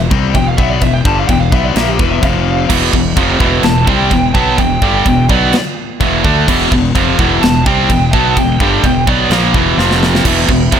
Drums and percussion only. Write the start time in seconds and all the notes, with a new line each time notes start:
0.11 kick
0.35 kick, china
0.58 kick
0.81 kick, china
1.05 kick
1.29 kick, china
1.52 kick
1.76 snare, china
1.99 kick
2.23 kick, china
2.70 kick, china, crash
2.93 kick
3.17 kick, china
3.40 kick
3.63 snare, china
3.87 kick
4.11 kick, china
4.35 kick
4.58 kick, china
4.82 kick
5.06 kick, china
5.29 kick
5.53 snare, china
6.01 kick, china
6.24 kick
6.48 kick, crash, china
6.72 kick
6.95 kick, china
7.19 kick
7.43 snare, china
7.66 kick
7.90 kick, china
8.13 kick
8.37 kick, china
8.60 kick
8.84 kick, china
9.07 kick
9.31 snare, china
9.54 kick
9.79 snare
9.91 snare
10.03 snare
10.15 snare
10.25 kick, china, crash
10.49 kick
10.72 kick, china